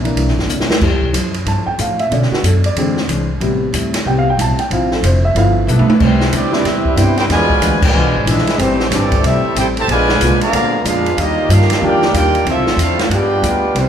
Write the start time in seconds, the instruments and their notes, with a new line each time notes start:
Already playing: upright bass A#1
0.02 grand piano E3 A#3 D4, ride
0.15 upright bass C2, hollow-body jazz guitar C3 A#3 D4 E4, ride
0.26 upright bass A#1, snare
0.37 upright bass G1, snare
0.47 upright bass D2, hollow-body jazz guitar C3 A#3 D4, hi-hat pedal
0.51 hollow-body jazz guitar E4
0.60 snare
0.70 snare
0.81 upright bass F2, hollow-body jazz guitar F3 E4 A4 C5, grand piano G3 A3 E4, kick, crash
0.91 upright bass E2
1.02 upright bass C2, kick
1.12 upright bass F#2, hollow-body jazz guitar F3 E4 A4 C5, hi-hat pedal, ride
1.34 ride
1.45 upright bass G2, hollow-body jazz guitar F3 E4 A4 C5, grand piano A5, ride
1.66 grand piano G5, muted upright bass stroke
1.78 upright bass A2, hollow-body jazz guitar F3 E4 A4 C5, grand piano F5, hi-hat pedal, ride
1.99 grand piano E5, ride
2.10 upright bass B2, grand piano D3 A3 C#4 D5, hollow-body jazz guitar B3 D4 A4 C#5, ride
2.22 snare
2.31 grand piano F#4, muted upright bass stroke, snare
2.43 upright bass F#2, hollow-body jazz guitar B3 D4 A4 C#5, grand piano A4, hi-hat pedal, ride
2.64 grand piano D5, ride
2.75 upright bass E2, grand piano D3 G#3 C4, hollow-body jazz guitar E3 D4 G#4, ride
2.79 hollow-body jazz guitar C5
2.97 snare
3.08 upright bass C2, hollow-body jazz guitar E3 D4 G#4 C5, hi-hat pedal, ride
3.40 upright bass A1, hollow-body jazz guitar A2 G3 C4 E4, grand piano C3 G3 B3, ride
3.73 upright bass D2, hollow-body jazz guitar A2 G3 C4 E4, hi-hat pedal, ride
3.94 snare, ride
4.05 upright bass C2, hollow-body jazz guitar A2 G3 C4 E4, grand piano C3 G3 B3 G5
4.18 grand piano F5
4.30 grand piano G5
4.37 upright bass B1, hollow-body jazz guitar A2 G3 C4 E4, hi-hat pedal, ride
4.41 grand piano A5
4.59 grand piano G5, ride
4.70 upright bass A1, hollow-body jazz guitar D3 F3 C4 E4, grand piano F3 C4 E4 F5, ride
4.91 grand piano A4, snare
5.03 upright bass F1, hollow-body jazz guitar D3 F3 C4 E4, grand piano C5, hi-hat pedal, ride
5.25 grand piano E5
5.35 upright bass G1, hollow-body jazz guitar G2 F3 B3 E4, grand piano F3 A3 B3 E4 F5, ride
5.67 upright bass B1, hollow-body jazz guitar G2 F3 B3 E4, trombone section F3 B3 E4, trumpet section D4 A4 B4 E5, hi-hat pedal
5.79 high tom
5.90 high tom
6.00 upright bass C2, hollow-body jazz guitar C3 G3 B3 E4, trombone section C3 E3 G3 C4 E4, trumpet section G3 E4 B4 C5, kick, crash
6.21 snare
6.32 upright bass D2, hollow-body jazz guitar C3 G3 B3 E4, trombone section G3 C4 D4, trumpet section C4 G4 B4 D5, hi-hat pedal, ride
6.52 grand piano G3 B3 C4 D4 E4, snare
6.64 upright bass E2, hollow-body jazz guitar C3 G3 B3, trombone section G3 C4 E4, trumpet section C4 G4 B4 E5, snare, ride
6.68 hollow-body jazz guitar E4
6.85 kick
6.96 upright bass G2, hollow-body jazz guitar C3 G3 B3 E4, grand piano G3 B3 C4 D4 E4, trombone section B3 E4 G4, trumpet section E4 B4 C5 G5, hi-hat pedal, ride
7.17 trombone section B3 E4 G4, trumpet section E4 B4 C5 G5, snare, ride
7.28 upright bass E2, trombone section B2 D3 E3 F3 G#3, hollow-body jazz guitar E3 G#3 D4, grand piano F3 G#3 B3 D4 E4, trumpet section F4 B4 D5 G#5, snare, ride
7.32 hollow-body jazz guitar F4
7.50 kick
7.60 upright bass D2, hollow-body jazz guitar E3 G#3 D4 F4, hi-hat pedal, ride
7.82 trombone section B2 D3 G#3, trumpet section F4 B4 D5 G#5, kick, crash
7.93 upright bass C2, hollow-body jazz guitar E3 G#3 D4
7.98 hollow-body jazz guitar F4
8.05 upright bass B1
8.15 upright bass G#1
8.26 upright bass A#1, hollow-body jazz guitar E3 G#3 D4 F4, trombone section G#3 B3 E4, trumpet section D4 G#4 B4 E5, hi-hat pedal, ride
8.38 snare
8.46 muted upright bass stroke, snare, ride
8.58 upright bass A1, hollow-body jazz guitar A2 G3 C4 E4, trombone section C3 E3 G3 A3 C4, grand piano G3 A3 B3 C4 E4, trumpet section A3 E4 G4 C5, ride
8.80 snare
8.89 upright bass G1, hollow-body jazz guitar A2 G3, trombone section E3 G3 D4, trumpet section C#5, snare, hi-hat pedal, ride
8.93 hollow-body jazz guitar C4 E4, trumpet section C4 G4 A4 D5
9.12 kick, ride
9.22 upright bass C2, hollow-body jazz guitar A2 G3 C4 E4, trombone section G3 C4 E4, trumpet section G4, ride
9.26 trumpet section C4 A4 E5
9.44 muted upright bass stroke
9.55 upright bass A1, hollow-body jazz guitar A2 G3 C4 E4, trombone section C4 E4 G4, trumpet section E4 A4 C5 G5, hi-hat pedal, ride
9.76 trombone section C3 E3 A3, trumpet section G4 C5 E5 A5, ride
9.87 upright bass A#1, hollow-body jazz guitar A#2 G#3 B3 D4, trombone section B2 D3 F3 G#3 A#3, ride
9.91 trumpet section F4 B4 D5 G#5
10.09 snare
10.19 upright bass C2, hollow-body jazz guitar A#2 G#3 B3 D4, grand piano G#3 A#3 B3 D4 F4, hi-hat pedal, ride
10.41 trombone section D3 F3 A#3, trumpet section G#4 D5 F5 A#5, ride
10.52 upright bass D2, hollow-body jazz guitar A#2 G#3 B3 D4, ride
10.84 upright bass F2, hollow-body jazz guitar A#2 G#3 B3 D4, trombone section G#3 D4 F4, trumpet section D4 G#4 B4 F5, hi-hat pedal, ride
11.06 ride
11.16 upright bass D#2, hollow-body jazz guitar D#3 G3 D4 F4, trombone section D#3 G3 A#3 D#4 F4, ride
11.20 trumpet section A#3 F4 G4 D#5
11.49 upright bass G2, hollow-body jazz guitar D#3 G3 D4 F4, trombone section A#3 D4 F4, trumpet section D4 G4 A#4 F5, hi-hat pedal, ride
11.61 snare
11.70 snare, ride
11.81 upright bass F2, grand piano D#3 G3 A#3 D4 F4, hollow-body jazz guitar D#3 G3, trombone section A#3 D4 G4
11.85 hollow-body jazz guitar D4 F4, trumpet section F4 A#4 D5 G5
12.02 snare
12.13 upright bass D#2, hollow-body jazz guitar D#3 G3 D4 F4, trombone section A#3 D4 G4, trumpet section F4 A#4 D5 G5, hi-hat pedal, ride
12.35 ride
12.45 upright bass D2, hollow-body jazz guitar D3 F3 C4 E4, trombone section D3 A3 C4 D4 F4, grand piano F3 A3 C4 D4 E4, ride
12.49 trumpet section C4 F4 A4 E5
12.56 upright bass C2
12.67 upright bass A1, snare
12.77 upright bass E2, hollow-body jazz guitar D3 F3 C4 E4, trombone section A3 C4 F4, hi-hat pedal, ride
12.82 trumpet section C4 E4 A4 F5
12.99 snare, ride
13.08 upright bass G2, hollow-body jazz guitar G3 B3 F4, trombone section G#3 D4 G4, trumpet section F#5, ride
13.13 trombone section B3 G4, trumpet section F4 B4 D5 G5, hollow-body jazz guitar G#4
13.42 upright bass D2, hollow-body jazz guitar G3 B3 F4 G#4, trombone section B3 D4 G4, hi-hat pedal, ride
13.46 trumpet section F4 B4 D5 G5
13.74 upright bass C2, hollow-body jazz guitar C3 G3 B3 E4, trombone section E3 G3 C4 E4, ride
13.78 trumpet section G3 E4 B4 C5